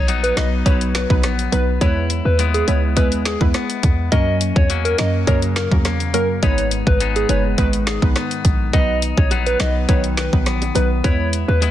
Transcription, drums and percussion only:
0.08 closed hi-hat
0.24 closed hi-hat
0.37 finger snap, snare, closed hi-hat
0.66 kick, closed hi-hat
0.81 closed hi-hat
0.95 finger snap, snare, closed hi-hat
1.10 kick
1.23 cross-stick, snare, closed hi-hat
1.39 closed hi-hat
1.52 closed hi-hat
1.81 kick, closed hi-hat
2.10 closed hi-hat
2.39 closed hi-hat
2.54 closed hi-hat
2.68 closed hi-hat
2.97 kick, closed hi-hat
3.12 closed hi-hat
3.25 finger snap, snare, closed hi-hat
3.41 kick
3.54 cross-stick, snare, closed hi-hat
3.70 closed hi-hat
3.83 kick, closed hi-hat
4.12 kick, closed hi-hat
4.41 closed hi-hat
4.56 kick
4.70 closed hi-hat
4.85 closed hi-hat
4.98 finger snap, snare, closed hi-hat
5.27 kick, closed hi-hat
5.42 closed hi-hat
5.56 finger snap, snare, closed hi-hat
5.71 kick
5.85 cross-stick, snare, closed hi-hat
6.00 closed hi-hat
6.14 closed hi-hat
6.43 kick, closed hi-hat
6.58 closed hi-hat
6.71 closed hi-hat
6.87 kick
7.00 closed hi-hat
7.16 closed hi-hat
7.29 closed hi-hat
7.58 kick, closed hi-hat
7.73 closed hi-hat
7.87 finger snap, snare, closed hi-hat
8.02 kick
8.16 cross-stick, snare, closed hi-hat
8.31 closed hi-hat
8.45 kick, closed hi-hat
8.73 kick, closed hi-hat
9.02 closed hi-hat
9.18 kick, high bongo
9.31 closed hi-hat, high bongo
9.46 closed hi-hat
9.60 finger snap, snare, closed hi-hat, high bongo, low bongo
9.89 kick, closed hi-hat
10.04 closed hi-hat
10.17 finger snap, snare, closed hi-hat
10.33 kick
10.46 cross-stick, snare, closed hi-hat
10.62 closed hi-hat, high bongo
10.75 closed hi-hat, high bongo, low bongo
11.04 kick, closed hi-hat
11.33 closed hi-hat
11.49 high bongo
11.62 closed hi-hat, high bongo

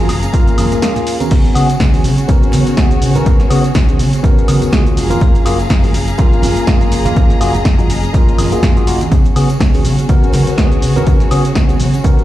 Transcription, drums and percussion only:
0.09 open hi-hat, high woodblock, shaker
0.23 closed hi-hat, tambourine, shaker
0.34 kick, closed hi-hat, tambourine, shaker
0.47 closed hi-hat, tambourine, shaker
0.58 open hi-hat, high conga, high woodblock, shaker
0.71 closed hi-hat, tambourine, low conga, shaker
0.82 snare, closed hi-hat, tambourine, shaker
0.95 closed hi-hat, tambourine, low conga, shaker
1.07 open hi-hat, shaker
1.20 closed hi-hat, tambourine, high conga, shaker
1.31 kick, closed hi-hat, crash, shaker
1.45 closed hi-hat, tambourine, shaker
1.55 open hi-hat, high woodblock, shaker
1.70 closed hi-hat, tambourine, shaker
1.80 kick, snare, closed hi-hat, tambourine, shaker
1.94 open hi-hat, tambourine, high conga, shaker
2.04 open hi-hat, shaker
2.18 closed hi-hat, tambourine, shaker
2.28 kick, closed hi-hat, tambourine, shaker
2.42 tambourine, shaker
2.52 open hi-hat, high conga, low conga, shaker
2.67 closed hi-hat, tambourine, shaker
2.77 kick, snare, closed hi-hat, shaker
2.91 closed hi-hat, tambourine, shaker
3.02 open hi-hat, shaker
3.15 closed hi-hat, tambourine, high conga, low conga, shaker
3.26 kick, closed hi-hat, tambourine, shaker
3.40 snare, closed hi-hat, tambourine, shaker
3.51 open hi-hat, high woodblock, shaker
3.64 closed hi-hat, tambourine, shaker
3.74 kick, snare, closed hi-hat, tambourine, shaker
3.88 closed hi-hat, tambourine, high conga, shaker
3.99 open hi-hat, shaker
4.13 closed hi-hat, tambourine, shaker
4.24 kick, closed hi-hat, shaker
4.37 tambourine, shaker
4.48 open hi-hat, high conga, high woodblock, shaker
4.62 closed hi-hat, tambourine, low conga, shaker
4.72 kick, snare, closed hi-hat, tambourine, shaker
4.86 closed hi-hat, tambourine, shaker
4.97 open hi-hat, shaker
5.10 closed hi-hat, tambourine, high conga, shaker
5.20 kick, closed hi-hat, tambourine, shaker
5.35 closed hi-hat, tambourine, shaker
5.46 open hi-hat, high woodblock, shaker
5.59 closed hi-hat, tambourine, shaker
5.69 kick, snare, closed hi-hat, tambourine, shaker
5.83 open hi-hat, tambourine, high conga, shaker
5.94 open hi-hat, shaker
6.07 closed hi-hat, tambourine, shaker
6.17 kick, closed hi-hat, tambourine, shaker
6.31 tambourine, shaker
6.42 open hi-hat, high conga, low conga, shaker
6.56 closed hi-hat, tambourine, shaker
6.67 kick, snare, closed hi-hat, tambourine, shaker
6.81 closed hi-hat, tambourine, shaker
6.92 open hi-hat, shaker
7.05 closed hi-hat, tambourine, high conga, low conga, shaker
7.16 kick, closed hi-hat, tambourine, shaker
7.30 snare, closed hi-hat, tambourine, shaker
7.41 open hi-hat, high woodblock, shaker
7.54 closed hi-hat, tambourine, low conga, shaker
7.65 kick, snare, closed hi-hat, shaker
7.78 closed hi-hat, tambourine, high conga, shaker
7.90 open hi-hat, shaker
8.03 closed hi-hat, tambourine, shaker
8.14 kick, closed hi-hat, tambourine, shaker
8.28 tambourine, shaker
8.38 open hi-hat, high conga, high woodblock, shaker
8.52 closed hi-hat, tambourine, low conga, shaker
8.63 kick, snare, closed hi-hat, shaker
8.77 closed hi-hat, tambourine, shaker
8.87 open hi-hat, shaker
9.01 closed hi-hat, tambourine, high conga, shaker
9.12 kick, closed hi-hat, tambourine, shaker
9.24 closed hi-hat, tambourine, shaker
9.36 open hi-hat, high woodblock, shaker
9.49 closed hi-hat, tambourine, shaker
9.60 kick, snare, closed hi-hat, shaker
9.74 open hi-hat, tambourine, high conga, shaker
9.85 open hi-hat, shaker
9.99 closed hi-hat, tambourine, shaker
10.09 kick, closed hi-hat, tambourine, shaker
10.23 tambourine, shaker
10.33 open hi-hat, high conga, low conga, shaker
10.47 closed hi-hat, tambourine, shaker
10.58 kick, snare, closed hi-hat, tambourine, shaker
10.72 closed hi-hat, tambourine, shaker
10.82 open hi-hat, shaker
10.96 closed hi-hat, tambourine, high conga, low conga, shaker
11.07 kick, closed hi-hat, tambourine, shaker
11.20 snare, closed hi-hat, tambourine, shaker
11.31 open hi-hat, high woodblock, shaker
11.45 closed hi-hat, tambourine, shaker
11.55 kick, snare, closed hi-hat, tambourine, shaker
11.69 closed hi-hat, tambourine, high conga, shaker
11.80 open hi-hat, shaker
11.94 closed hi-hat, tambourine, shaker
12.04 kick, closed hi-hat, shaker
12.18 tambourine, shaker

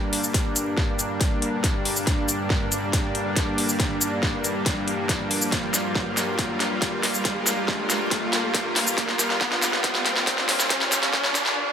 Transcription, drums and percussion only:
0.13 open hi-hat
0.24 shaker
0.34 kick, snare, closed hi-hat
0.56 closed hi-hat, shaker
0.77 kick, snare
0.99 closed hi-hat, shaker
1.21 kick, snare, closed hi-hat
1.42 closed hi-hat
1.64 kick, snare, closed hi-hat
1.85 open hi-hat
1.96 shaker
2.07 kick, snare, closed hi-hat
2.29 closed hi-hat, shaker
2.50 kick, snare
2.72 closed hi-hat, shaker
2.93 kick, snare, closed hi-hat
3.15 closed hi-hat
3.36 kick, snare, closed hi-hat
3.58 open hi-hat
3.69 shaker
3.80 kick, snare, closed hi-hat
4.01 closed hi-hat, shaker
4.23 kick, snare
4.44 closed hi-hat, shaker
4.66 kick, snare, closed hi-hat
4.88 closed hi-hat
5.09 kick, snare, closed hi-hat
5.31 open hi-hat
5.42 shaker
5.52 kick, snare, closed hi-hat
5.74 snare, closed hi-hat, shaker
5.95 kick, snare
6.17 snare, closed hi-hat, shaker
6.39 kick, snare, closed hi-hat
6.60 snare, closed hi-hat
6.82 kick, snare, closed hi-hat
7.03 snare, open hi-hat
7.14 shaker
7.25 kick, snare, closed hi-hat
7.47 snare, closed hi-hat, shaker
7.68 kick, snare
7.90 snare, closed hi-hat, shaker
8.11 kick, snare, closed hi-hat
8.33 snare, closed hi-hat
8.54 kick, snare, closed hi-hat
8.76 snare, open hi-hat
8.87 shaker
8.98 kick, snare, closed hi-hat
9.09 snare
9.19 snare, closed hi-hat, shaker
9.30 snare
9.41 kick, snare
9.52 snare
9.62 snare, closed hi-hat, shaker
9.73 snare
9.84 kick, snare, closed hi-hat
9.95 snare
10.06 snare, closed hi-hat
10.16 snare
10.27 kick, snare, closed hi-hat
10.38 snare
10.49 snare, open hi-hat
10.60 snare, shaker
10.70 kick, snare, closed hi-hat
10.81 snare
10.92 snare, closed hi-hat, shaker
11.03 snare, closed hi-hat
11.13 kick, snare
11.24 snare
11.35 snare, closed hi-hat, shaker
11.46 snare

